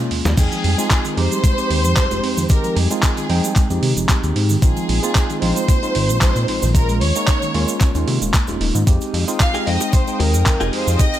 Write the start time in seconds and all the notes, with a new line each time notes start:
Already playing: A#3 G#4 C#5 D#5
0.00 G#3 A#3 C#4 F4
0.11 D#2, open hi-hat
0.25 D#2, snare, closed hi-hat, cabasa
0.37 F2 D#3 G#3 C4 D#4 G#4 G5, kick, closed hi-hat, crash, cabasa, shaker
0.52 F3, closed hi-hat, cabasa, shaker
0.64 F2 G3, open hi-hat
0.78 G#3 C4 D#4 F4, closed hi-hat, cabasa, shaker
0.90 C4, kick, clap, closed hi-hat, cabasa, shaker
1.05 D#3, closed hi-hat, cabasa, shaker
1.16 F2 F3 G#3 C4 D#4 G4 C5, open hi-hat
1.31 G3, closed hi-hat, cabasa, shaker
1.44 G#3, kick, closed hi-hat, cabasa, shaker
1.57 G#3 C4 D#4 G4, closed hi-hat, cabasa, shaker
1.70 D#2 D#3, open hi-hat
1.84 F2 F3, closed hi-hat, cabasa, shaker
1.96 F2 G3 G#3, kick, clap, closed hi-hat, cabasa, shaker
2.11 F1 G#3, closed hi-hat, cabasa, shaker
2.23 F2 C4, open hi-hat
2.37 F2 D#3, cabasa, shaker
2.49 D#3 G#3 C4 D#4 G4 A#4, kick, closed hi-hat, cabasa, shaker
2.64 F3, closed hi-hat, cabasa, shaker
2.76 F2 G3 G#4, open hi-hat
2.90 G#3 C4 D#4 F4, closed hi-hat, cabasa, shaker
3.03 C4, kick, clap, closed hi-hat, cabasa, shaker
3.17 D#3, closed hi-hat, cabasa, shaker
3.29 F2 F3 G#3 C4 D#4 G5, open hi-hat
3.43 G3, closed hi-hat, cabasa, shaker
3.56 G#3, kick, clap, closed hi-hat, cabasa, shaker
3.70 F2 G#3 C4 D#4 G4, closed hi-hat, cabasa, shaker
3.82 C3 D#3, open hi-hat
3.96 F1 F3, closed hi-hat, cabasa, shaker
4.09 G3 G#3 C4 D#4 G4, kick, clap, closed hi-hat, cabasa, shaker
4.23 D#2 G#3, closed hi-hat, cabasa, shaker
4.36 G#2 C4, open hi-hat
4.49 D#3, cabasa, shaker
4.62 A#1 D#3 G#3 C4 D#4 F4 G#4, kick, closed hi-hat, cabasa, shaker
4.77 F3, closed hi-hat, cabasa, shaker
4.89 A#1 G#3, open hi-hat
5.03 G#3 A#3 C4 D#4 F4, closed hi-hat, cabasa, shaker
5.15 D#4, kick, clap, closed hi-hat, cabasa, shaker
5.29 D#3, closed hi-hat, cabasa, shaker
5.41 A#1 F3 G#3 C4 D#4 F4 C5, open hi-hat
5.56 G#3, closed hi-hat, cabasa, shaker
5.68 A#3, kick, closed hi-hat, cabasa, shaker
5.82 G#3 C4 D#4 F4, closed hi-hat, cabasa, shaker
5.95 G#1 D#3, open hi-hat
6.09 A#1 F3, closed hi-hat, cabasa, shaker
6.21 A#1 G#3 C4 D#4 F4, kick, clap, closed hi-hat, cabasa, shaker
6.36 A#2 A#3, closed hi-hat, cabasa, shaker
6.48 A#1 D#4, open hi-hat
6.62 A#1 D#3, cabasa, shaker
6.74 G#3 A#3 C#4 F4 A#4, kick, closed hi-hat, cabasa, shaker
6.89 G#3, closed hi-hat, cabasa, shaker
7.01 D#2 A#3 C#5, open hi-hat
7.15 G#3 A#3 C#4 D#4, closed hi-hat, cabasa, shaker
7.27 D#4, kick, clap, closed hi-hat, cabasa, shaker
7.42 D#3, closed hi-hat, cabasa, shaker
7.54 D#2 G#3 A#3 C#4 F4, open hi-hat
7.68 A#3, closed hi-hat, cabasa, shaker
7.80 C#4, kick, clap, closed hi-hat, cabasa, shaker
7.94 D#2 G#3 A#3 C#4 D#4 F4, closed hi-hat, cabasa, shaker
8.07 C3 D#3, open hi-hat
8.22 D#1 G#3, closed hi-hat, cabasa, shaker
8.34 A#3, kick, clap, closed hi-hat, cabasa, shaker
8.47 D#1 G#3 A#3 C#4 F4, closed hi-hat, cabasa, shaker
8.61 D#1 D#4, open hi-hat
8.75 G#2 D#3, closed hi-hat, cabasa, shaker
8.86 F2 G#3 C4 D#4 G4 F5 G5 D#6, kick, closed hi-hat, cabasa, shaker
9.01 closed hi-hat, cabasa, shaker
9.14 F2, open hi-hat
9.27 G#3 C4 D#4 F4, closed hi-hat, cabasa, shaker
9.40 F5, muted clean electric guitar stroke, kick, clap, closed hi-hat, cabasa, shaker
9.54 D#4 F4 G4 G#4, closed hi-hat, cabasa, shaker
9.66 F2 G#3 C4 D#4 D#5 G5, open hi-hat
9.80 muted clean electric guitar stroke, closed hi-hat, cabasa, shaker
9.93 C5, muted clean electric guitar stroke, kick, closed hi-hat, cabasa, shaker
10.07 G#3 C4 D#4 G5, closed hi-hat, cabasa, shaker
10.20 D#2 A#4, muted clean electric guitar stroke, open hi-hat
10.34 F2, muted clean electric guitar stroke, closed hi-hat, cabasa, shaker
10.46 F2 G#3 C4 D#4 G5, kick, clap, closed hi-hat, cabasa, shaker
10.60 F1 D#4 F4 G4 G#4, closed hi-hat, cabasa, shaker
10.73 F2 C5, open hi-hat
10.87 F2, cabasa, shaker
10.99 G#3 C4 D#4 D#5 G5, kick, closed hi-hat, cabasa, shaker
11.14 closed hi-hat, cabasa, shaker